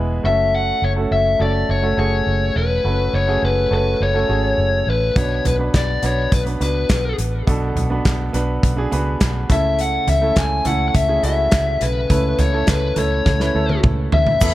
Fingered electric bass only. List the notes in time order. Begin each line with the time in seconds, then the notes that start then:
Already playing: E1
0.24 F#1
0.82 F#1
1.11 F#1
1.40 F#1
1.69 F#1
1.97 F#1
2.26 F#1
2.56 E1
2.84 F#1
3.13 F#1
3.42 F#1
3.71 F#1
4.00 F#1
4.29 G#1
4.58 F#1
4.87 A1
5.16 B1
5.45 B1
5.74 B1
6.03 B1
6.32 B1
6.60 C#2
6.90 B1
7.18 A1
7.47 B1
7.75 B1
8.05 B1
8.34 B1
8.63 B1
8.92 C#2
9.21 B1
9.50 C#2
10.07 C#2
10.36 C#2
10.66 C#2
10.94 C#2
11.23 C#2
11.52 C#2
11.81 B1
12.10 C#2
12.38 C#2
12.68 C#2
12.97 C#2
13.26 C#2
13.55 D2
13.84 C#2
14.12 D2
14.41 E2